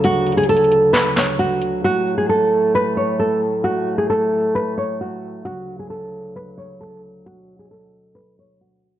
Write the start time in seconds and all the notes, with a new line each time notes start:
Already playing: D2 C#3 F#3
0.04 F#4, closed hi-hat
0.27 closed hi-hat
0.32 closed hi-hat
0.37 G#4, closed hi-hat
0.43 closed hi-hat
0.49 A4, closed hi-hat
0.57 closed hi-hat
0.64 closed hi-hat
0.72 closed hi-hat
0.93 B4, snare, clap, closed hi-hat
1.17 C#5, snare, clap, closed hi-hat
1.28 closed hi-hat
1.39 F#4, closed hi-hat
1.62 closed hi-hat
1.84 A2 A3 F#4
2.18 G#4
2.29 A4
2.75 B4
2.97 C#5
3.19 A4
3.64 A3 F#4
3.98 G#4
4.10 A4
4.55 B4
4.78 C#5
5.01 F#4
5.45 D2 C#3 F#3 F#4
5.79 G#4
5.90 A4
6.36 B4
6.58 C#5
6.81 A4
7.26 B2 F#4
7.59 G#4
7.71 A4
8.15 B4
8.39 C#5
8.61 F#4